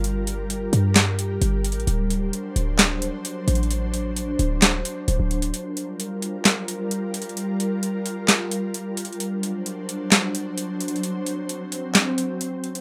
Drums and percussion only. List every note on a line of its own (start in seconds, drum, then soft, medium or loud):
0.04 closed hi-hat medium
0.27 closed hi-hat medium
0.50 closed hi-hat medium
0.73 closed hi-hat medium
0.95 snare loud
0.95 clap medium
0.95 closed hi-hat medium
1.19 closed hi-hat medium
1.42 closed hi-hat medium
1.64 closed hi-hat medium
1.72 closed hi-hat medium
1.80 closed hi-hat soft
1.87 closed hi-hat medium
2.10 closed hi-hat medium
2.33 closed hi-hat medium
2.56 closed hi-hat medium
2.79 snare loud
2.79 clap medium
2.79 closed hi-hat medium
3.02 closed hi-hat medium
3.25 closed hi-hat medium
3.48 closed hi-hat medium
3.55 closed hi-hat medium
3.63 closed hi-hat soft
3.71 closed hi-hat medium
3.94 closed hi-hat medium
4.16 closed hi-hat medium
4.39 closed hi-hat medium
4.62 snare loud
4.62 clap medium
4.62 closed hi-hat medium
4.85 closed hi-hat medium
5.08 closed hi-hat medium
5.31 closed hi-hat soft
5.31 open hi-hat medium
5.42 closed hi-hat medium
5.54 closed hi-hat medium
5.77 closed hi-hat medium
6.00 closed hi-hat medium
6.22 closed hi-hat medium
6.45 snare loud
6.45 clap medium
6.45 closed hi-hat medium
6.68 closed hi-hat medium
6.91 closed hi-hat medium
7.14 closed hi-hat medium
7.22 closed hi-hat medium
7.29 closed hi-hat soft
7.37 closed hi-hat medium
7.60 closed hi-hat medium
7.83 closed hi-hat medium
8.06 closed hi-hat medium
8.28 snare loud
8.28 clap medium
8.28 closed hi-hat medium
8.51 closed hi-hat medium
8.74 closed hi-hat medium
8.97 closed hi-hat medium
9.05 closed hi-hat medium
9.13 closed hi-hat soft
9.20 closed hi-hat medium
9.43 closed hi-hat medium
9.66 closed hi-hat medium
9.89 closed hi-hat medium
10.11 snare loud
10.11 clap medium
10.11 closed hi-hat medium
10.35 closed hi-hat medium
10.58 closed hi-hat medium
10.80 closed hi-hat medium
10.88 closed hi-hat medium
10.96 closed hi-hat soft
11.03 closed hi-hat medium
11.26 closed hi-hat medium
11.49 closed hi-hat medium
11.72 closed hi-hat medium
11.95 snare loud
11.95 clap medium
11.95 closed hi-hat medium
12.18 closed hi-hat medium
12.41 closed hi-hat medium
12.64 closed hi-hat soft
12.64 open hi-hat medium
12.75 closed hi-hat medium